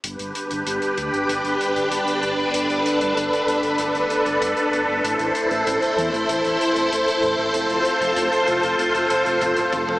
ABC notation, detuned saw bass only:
X:1
M:4/4
L:1/16
Q:1/4=96
K:Gmix
V:1 name="Detuned saw bass" clef=bass
G,,, G,,, z G,,, G,,, z D,, G,,, G,,, G,,, z G,,, G,,, z G,,, G,,, | G,,, G,,, z G,,, G,,, z G,,, G,,, G,,, G,,, z G,,, G,,, z G,,, G,,, | A,,, A,,, z A,,, A,,, z E,, A,,, A,,, A,,, z A,,, A,,, z A,,, A,,, | F,,, F,,, z F,,, F,,, z F,,, F,,, F,,, F,,, z F,,, F,,, z F,,, F,,, |]